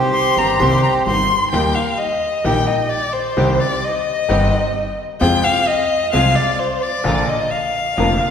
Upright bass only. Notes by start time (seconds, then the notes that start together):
0.37 G1
0.61 C2
1.06 G1
1.53 D#2
2.45 A#1
3.37 C2
4.29 G1
5.21 F2
6.14 C2
7.05 A#1
7.98 F1